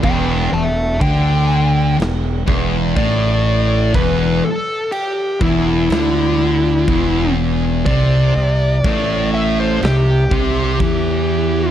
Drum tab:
CC |x-x-x-x-|x-x-x-x-|x-x-x-x-|
SD |----o---|----o---|----o---|
BD |o-o--oo-|o--o--o-|o-o--oo-|